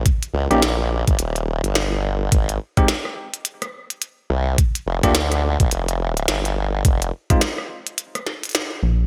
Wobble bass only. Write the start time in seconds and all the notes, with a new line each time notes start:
0.34 C#2
0.51 A#1
1.08 G1
1.18 D#1
1.63 G1
2.32 G#1
4.30 C2
4.86 F1
5.04 D2
5.60 A#1
5.71 F1
6.28 G1
6.85 F1